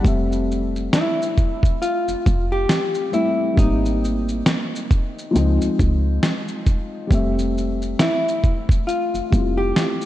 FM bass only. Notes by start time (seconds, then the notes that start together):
0.05 F1
2.08 F1
2.27 F1
3.58 G#1
5.36 C#2
5.62 C#2
5.80 C#2
7.11 F1
9.14 F1
9.33 F1